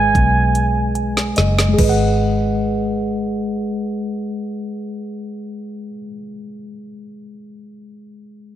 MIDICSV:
0, 0, Header, 1, 5, 480
1, 0, Start_track
1, 0, Key_signature, 5, "minor"
1, 0, Tempo, 786370
1, 579, Tempo, 836820
1, 1059, Time_signature, 6, 3, 24, 8
1, 1059, Tempo, 862069
1, 4829, End_track
2, 0, Start_track
2, 0, Title_t, "Flugelhorn"
2, 0, Program_c, 0, 56
2, 0, Note_on_c, 0, 80, 85
2, 561, Note_off_c, 0, 80, 0
2, 4829, End_track
3, 0, Start_track
3, 0, Title_t, "Tine electric piano"
3, 0, Program_c, 1, 4
3, 0, Control_c, 1, 64, 127
3, 0, Note_on_c, 1, 56, 52
3, 0, Note_on_c, 1, 68, 43
3, 0, Note_on_c, 1, 71, 41
3, 0, Note_on_c, 1, 75, 42
3, 0, Note_on_c, 1, 80, 57
3, 574, Note_off_c, 1, 80, 0
3, 581, Note_on_c, 1, 80, 46
3, 800, Note_off_c, 1, 80, 0
3, 813, Note_off_c, 1, 75, 0
3, 820, Note_on_c, 1, 75, 55
3, 995, Note_off_c, 1, 56, 0
3, 1002, Note_on_c, 1, 56, 55
3, 1025, Note_off_c, 1, 68, 0
3, 1032, Note_on_c, 1, 68, 57
3, 1037, Note_off_c, 1, 71, 0
3, 1044, Note_off_c, 1, 75, 0
3, 1062, Note_on_c, 1, 71, 50
3, 1065, Control_c, 1, 64, 0
3, 1090, Note_on_c, 1, 75, 51
3, 1119, Note_on_c, 1, 78, 69
3, 1150, Control_c, 1, 64, 127
3, 3347, Note_off_c, 1, 56, 0
3, 3375, Note_off_c, 1, 68, 0
3, 3405, Note_off_c, 1, 71, 0
3, 3433, Note_off_c, 1, 75, 0
3, 3462, Note_off_c, 1, 78, 0
3, 4829, End_track
4, 0, Start_track
4, 0, Title_t, "Fingered electric bass"
4, 0, Program_c, 2, 33
4, 0, Note_on_c, 2, 32, 65
4, 76, Note_off_c, 2, 32, 0
4, 97, Note_on_c, 2, 35, 67
4, 793, Note_off_c, 2, 35, 0
4, 826, Note_on_c, 2, 30, 70
4, 1041, Note_off_c, 2, 30, 0
4, 1064, Note_on_c, 2, 32, 70
4, 3407, Note_off_c, 2, 32, 0
4, 4829, End_track
5, 0, Start_track
5, 0, Title_t, "Drums"
5, 92, Note_on_c, 9, 36, 77
5, 95, Note_on_c, 9, 42, 48
5, 153, Note_off_c, 9, 36, 0
5, 156, Note_off_c, 9, 42, 0
5, 336, Note_on_c, 9, 42, 60
5, 397, Note_off_c, 9, 42, 0
5, 582, Note_on_c, 9, 42, 37
5, 639, Note_off_c, 9, 42, 0
5, 707, Note_on_c, 9, 38, 49
5, 764, Note_off_c, 9, 38, 0
5, 816, Note_on_c, 9, 42, 54
5, 826, Note_on_c, 9, 38, 62
5, 873, Note_off_c, 9, 42, 0
5, 883, Note_off_c, 9, 38, 0
5, 944, Note_on_c, 9, 38, 67
5, 1002, Note_off_c, 9, 38, 0
5, 1059, Note_on_c, 9, 49, 67
5, 1060, Note_on_c, 9, 36, 83
5, 1115, Note_off_c, 9, 36, 0
5, 1115, Note_off_c, 9, 49, 0
5, 4829, End_track
0, 0, End_of_file